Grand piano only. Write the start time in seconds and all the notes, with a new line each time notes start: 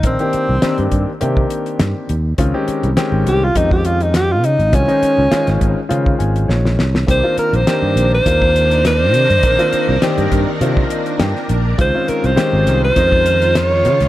0.04 D#3 A#3 C4 D4 A#4
0.20 D#3 A#3 C4 D4 G4
0.62 D#3 A#3 C4 D4 G4
1.21 D#3 A#3 C4 D4 G4
2.38 D#3 G#3 C4 C#4 F4
2.54 D#3 G#3 C4 C#4 G4
2.96 D#3 G#3 C4 C#4 G4
3.55 D#3 G#3 C4 C#4 G4
4.72 D#3 G#3 C4 C#4 F4
4.88 D#3 G#3 C#4 D#4 C5
5.31 D#3 G#3 C#4 F4 C5
5.89 D#3 G#3 C#4 F4 C5
6.19 G#5
6.48 C#5
7.07 D#3 A#3 C4 D4 G4
7.23 D#3 A#3 C4 D4 F4
7.67 D#3 A#3 C4 D4 G4
8.26 D#3 A#3 C4 D4 F4
9.44 D#3 A#3 C4 D4 A#4
9.59 D#3 A#3 C4 D4 F4
10.03 D#3 A#3 C4 D4 G4
10.62 D#3 A#3 C4 D4 F4
10.92 D#5
11.20 G5
11.78 D#3 G#3 C4 C#4 F4
11.94 D#3 G#3 C4 C#4 F4
12.36 D#3 G#3 C4 C#4 G4
12.96 D#3 G#3 C#4 D#4